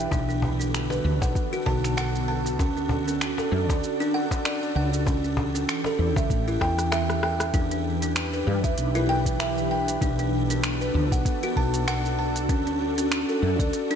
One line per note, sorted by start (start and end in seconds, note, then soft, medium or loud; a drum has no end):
0.11 1.00 B1 medium
0.11 2.57 D3 medium
0.11 2.57 B3 medium
0.11 0.27 D4 loud
0.11 5.03 F#4 medium
0.11 7.50 A4 medium
0.11 kick loud
0.11 cajon bass medium
0.11 shaker medium
0.29 0.42 D4 medium
0.29 shaker soft
0.42 cajon bass medium
0.60 0.73 D4 medium
0.60 shaker medium
0.74 finger snap medium
0.74 shaker soft
0.90 1.20 B4 medium
0.90 cajon slap medium
0.90 shaker soft
1.04 1.22 D2 loud
1.22 1.33 B1 medium
1.22 1.51 F#5 medium
1.22 kick loud
1.22 cajon slap medium
1.22 shaker medium
1.35 kick medium
1.35 shaker soft
1.53 1.66 F#4 loud
1.53 shaker soft
1.66 2.59 B1 medium
1.66 1.83 A5 loud
1.66 kick medium
1.66 cajon slap medium
1.84 finger snap soft
1.84 shaker medium
1.97 2.27 F#5 loud
1.97 finger snap medium
1.97 shaker soft
2.15 shaker soft
2.28 2.45 A5 medium
2.46 cajon slap soft
2.46 shaker medium
2.59 3.33 D2 loud
2.59 2.75 C#4 loud
2.59 5.04 D4 medium
2.59 kick loud
2.59 cajon bass medium
2.59 shaker soft
2.77 2.90 C#4 medium
2.77 shaker soft
2.89 cajon bass medium
3.08 3.21 C#4 medium
3.08 shaker medium
3.21 finger snap medium
3.21 shaker medium
3.38 3.68 A4 medium
3.38 cajon slap medium
3.38 shaker soft
3.52 3.69 F#2 loud
3.69 3.80 D2 medium
3.69 3.99 D5 medium
3.69 kick medium
3.69 cajon slap medium
3.69 shaker medium
3.83 shaker medium
4.00 4.13 D4 loud
4.00 shaker soft
4.14 4.31 F#5 loud
4.31 kick medium
4.31 cajon slap medium
4.31 shaker medium
4.45 4.75 D5 loud
4.45 finger snap medium
4.45 shaker soft
4.63 shaker soft
4.75 5.64 C#2 medium
4.75 4.92 F#5 medium
4.93 shaker medium
5.07 7.52 E3 medium
5.07 5.22 C#4 medium
5.07 7.52 G4 medium
5.07 kick loud
5.07 cajon bass medium
5.07 shaker medium
5.24 5.37 C#4 medium
5.24 shaker soft
5.37 cajon bass medium
5.55 5.68 C#4 medium
5.55 cajon slap soft
5.55 shaker medium
5.69 finger snap medium
5.69 shaker soft
5.84 6.15 A4 medium
5.84 cajon slap medium
5.84 shaker soft
5.99 6.17 E2 loud
6.16 6.28 C#2 medium
6.16 6.46 E5 medium
6.16 kick loud
6.16 cajon slap medium
6.16 shaker medium
6.30 6.56 A1 medium
6.30 kick medium
6.30 shaker medium
6.48 6.61 E4 loud
6.48 shaker soft
6.61 7.49 E2 medium
6.61 6.78 G5 medium
6.61 kick medium
6.61 cross-stick medium
6.61 cajon slap medium
6.79 cross-stick medium
6.79 shaker medium
6.92 7.22 E5 loud
6.92 finger snap medium
6.92 cross-stick medium
6.92 shaker medium
7.10 cross-stick medium
7.10 shaker soft
7.23 7.40 G5 medium
7.23 cross-stick medium
7.40 cross-stick medium
7.40 cajon slap soft
7.40 shaker medium
7.54 8.42 E2 loud
7.54 9.99 E3 medium
7.54 7.70 D4 medium
7.54 9.99 D4 medium
7.54 9.99 G4 medium
7.54 9.99 B4 medium
7.54 kick loud
7.54 closed hi-hat medium
7.54 shaker medium
7.71 7.84 D4 medium
7.71 closed hi-hat soft
7.71 shaker soft
8.02 8.15 D4 medium
8.02 closed hi-hat soft
8.02 shaker medium
8.16 finger snap loud
8.16 closed hi-hat medium
8.16 shaker medium
8.33 8.63 B4 medium
8.33 shaker soft
8.47 8.64 G2 loud
8.64 8.75 E2 medium
8.64 8.93 E5 medium
8.64 kick loud
8.64 closed hi-hat soft
8.64 shaker medium
8.78 9.97 B1 medium
8.78 closed hi-hat medium
8.78 shaker medium
8.95 9.08 E4 loud
8.95 closed hi-hat soft
8.95 shaker soft
9.09 9.25 G5 loud
9.26 kick medium
9.26 closed hi-hat soft
9.26 shaker medium
9.40 9.69 E5 loud
9.40 finger snap loud
9.40 closed hi-hat medium
9.40 shaker medium
9.58 shaker soft
9.71 9.87 G5 medium
9.88 closed hi-hat soft
9.88 shaker medium
10.01 10.90 B1 medium
10.01 12.47 B3 medium
10.01 10.17 D4 loud
10.01 13.95 D4 medium
10.01 13.95 F#4 medium
10.01 13.95 A4 medium
10.01 kick loud
10.01 closed hi-hat medium
10.01 shaker medium
10.19 10.32 D4 medium
10.19 closed hi-hat soft
10.19 shaker soft
10.50 10.63 D4 medium
10.50 closed hi-hat soft
10.50 shaker medium
10.64 finger snap loud
10.64 closed hi-hat medium
10.64 shaker medium
10.81 11.10 B4 medium
10.81 shaker soft
10.94 11.12 D2 loud
11.12 11.23 B1 medium
11.12 11.41 F#5 medium
11.12 kick loud
11.12 closed hi-hat soft
11.12 shaker medium
11.25 kick loud
11.25 closed hi-hat medium
11.25 shaker medium
11.43 11.56 F#4 loud
11.43 closed hi-hat soft
11.43 shaker soft
11.56 12.49 B1 medium
11.56 11.73 A5 loud
11.56 kick medium
11.74 closed hi-hat soft
11.74 shaker medium
11.88 12.17 F#5 loud
11.88 finger snap loud
11.88 closed hi-hat medium
11.88 shaker medium
12.05 shaker soft
12.19 12.35 A5 medium
12.36 closed hi-hat soft
12.36 shaker medium
12.49 13.23 D2 loud
12.49 12.65 C#4 loud
12.49 kick loud
12.49 closed hi-hat medium
12.49 shaker medium
12.67 12.80 C#4 medium
12.67 closed hi-hat soft
12.67 shaker soft
12.98 13.11 C#4 medium
12.98 closed hi-hat soft
12.98 shaker medium
13.12 finger snap loud
13.12 closed hi-hat medium
13.12 shaker medium
13.29 13.58 A4 medium
13.29 shaker soft
13.42 13.59 F#2 loud
13.59 13.70 D2 medium
13.59 13.89 D5 medium
13.59 kick loud
13.59 closed hi-hat soft
13.59 shaker medium
13.73 closed hi-hat medium
13.73 shaker medium
13.91 13.95 D4 loud
13.91 closed hi-hat soft
13.91 shaker soft